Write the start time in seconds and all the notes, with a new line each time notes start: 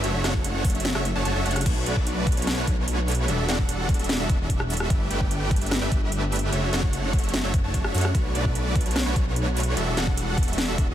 0.04 F#1 A3 D4 F#4 C#5 E5, closed hi-hat
0.24 F#1 A3 D4 F#4 C#5 F#5, cross-stick, snare, closed hi-hat
0.34 kick
0.44 closed hi-hat
0.65 kick, open hi-hat
0.70 closed hi-hat
0.75 F#1 A3 D4 F#4 C#5 E5, closed hi-hat
0.80 closed hi-hat
0.85 snare, closed hi-hat
0.95 F#1 A3 D4 F#4 C#5 E5, cross-stick
1.05 closed hi-hat
1.15 F#1 A3 D4 F#4 C#5 A5
1.25 F#1 A3 D4 F#4 C#5 A5, closed hi-hat
1.35 F#1 A3 D4 F#4 C#5 E5
1.46 F#1 A3 D4 F#4 C#5 F#5, closed hi-hat
1.51 closed hi-hat
1.56 cross-stick, closed hi-hat
1.61 closed hi-hat
1.66 B1 A3 D4 F#4 B4 C#5, kick, closed hi-hat, crash
1.86 B1 A3 D4 F#4 B4 D5, closed hi-hat
1.97 kick
2.07 closed hi-hat
2.27 kick, closed hi-hat
2.32 closed hi-hat
2.37 B1 A3 D4 F#4 B4 C#5, closed hi-hat
2.42 closed hi-hat
2.47 cross-stick, snare, closed hi-hat
2.57 B1 A3 D4 F#4 B4 C#5
2.67 B1 A3 D4 F#4 B4 C#5, kick, closed hi-hat
2.78 B1 A3 D4 F#4 B4 C#5
2.88 closed hi-hat
3.08 closed hi-hat, open hi-hat
3.15 closed hi-hat
3.28 E1 G3 D4 F#4 A4 E5, closed hi-hat
3.48 E1 G3 D4 F#4 A4 F#5, snare, closed hi-hat
3.59 kick
3.69 closed hi-hat
3.89 kick, closed hi-hat
3.94 closed hi-hat
3.99 E1 G3 D4 F#4 A4 E5, closed hi-hat
4.04 closed hi-hat
4.09 snare, closed hi-hat
4.19 E1 G3 D4 F#4 A4 E5
4.29 E1 G3 D4 F#4 A4 E5, kick, closed hi-hat
4.39 E1 G3 D4 F#4 A4 E5
4.50 kick, closed hi-hat
4.60 cross-stick
4.70 closed hi-hat, open hi-hat
4.77 cross-stick, closed hi-hat
4.90 G1 A3 D4 G4 B4 E5, kick, closed hi-hat
5.10 G1 A3 D4 G4 B4 G5, closed hi-hat
5.21 kick
5.31 closed hi-hat
5.51 kick, closed hi-hat
5.56 closed hi-hat
5.61 G1 A3 D4 G4 B4 E5, closed hi-hat
5.67 closed hi-hat
5.71 cross-stick, snare, closed hi-hat
5.81 G1 A3 D4 G4 B4 E5
5.92 G1 A3 D4 G4 B4 E5, kick, closed hi-hat
6.02 G1 A3 D4 G4 B4 E5
6.12 closed hi-hat
6.32 closed hi-hat, open hi-hat
6.39 closed hi-hat
6.52 F#1 A3 D4 F#4 C#5 E5, closed hi-hat
6.73 F#1 A3 D4 F#4 C#5 F#5, snare, closed hi-hat
6.83 kick
6.93 closed hi-hat
7.13 kick, closed hi-hat
7.19 closed hi-hat
7.23 F#1 A3 D4 F#4 C#5 E5, closed hi-hat
7.29 closed hi-hat
7.34 snare, closed hi-hat
7.44 F#1 A3 D4 F#4 C#5 E5
7.54 kick, closed hi-hat
7.64 F#1 A3 D4 F#4 C#5 A5
7.74 F#1 A3 D4 F#4 C#5 A5, kick, closed hi-hat
7.84 F#1 A3 D4 F#4 C#5 E5, cross-stick
7.94 F#2 A3 D4 F#4 C#5 F#5, closed hi-hat, open hi-hat
8.01 cross-stick, closed hi-hat
8.14 B1 A3 D4 F#4 B4 C#5, kick, closed hi-hat
8.35 B1 A3 D4 F#4 B4 D5, closed hi-hat
8.45 kick
8.55 closed hi-hat
8.76 kick, closed hi-hat
8.81 closed hi-hat
8.85 B1 A3 D4 F#4 B4 C#5, closed hi-hat
8.91 closed hi-hat
8.96 cross-stick, snare, closed hi-hat
9.06 B1 A3 D4 F#4 B4 C#5
9.16 B1 A3 D4 F#4 B4 C#5, kick, closed hi-hat
9.26 B1 A3 D4 F#4 B4 C#5
9.36 closed hi-hat
9.57 closed hi-hat, open hi-hat
9.63 closed hi-hat
9.77 E1 G3 D4 F#4 A4 E5, closed hi-hat
9.97 E1 G3 D4 F#4 A4 F#5, snare, closed hi-hat
10.07 kick
10.17 closed hi-hat
10.38 kick, closed hi-hat
10.43 closed hi-hat
10.47 E1 G3 D4 F#4 A4 E5, closed hi-hat
10.53 closed hi-hat
10.58 snare, closed hi-hat
10.68 E1 G3 D4 F#4 A4 E5
10.78 E1 G3 D4 F#4 A4 E5, kick, closed hi-hat
10.88 E1 G3 D4 F#4 A4 E5